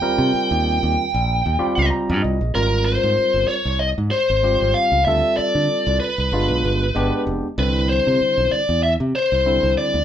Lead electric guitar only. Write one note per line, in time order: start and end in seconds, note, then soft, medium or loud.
0.00 1.87 G5 loud
2.55 2.85 A#4 medium
2.86 3.47 C5 medium
3.48 3.78 C#5 medium
3.79 3.88 D#5 medium
4.11 4.77 C5 medium
4.74 5.04 F5 medium
5.05 5.35 E5 medium
5.37 5.96 D5 medium
6.00 7.22 B4 medium
7.59 7.89 B4 medium
7.89 8.54 C5 medium
8.51 8.83 D5 medium
8.83 8.92 E5 medium
9.15 9.74 C5 medium
9.78 10.04 D5 medium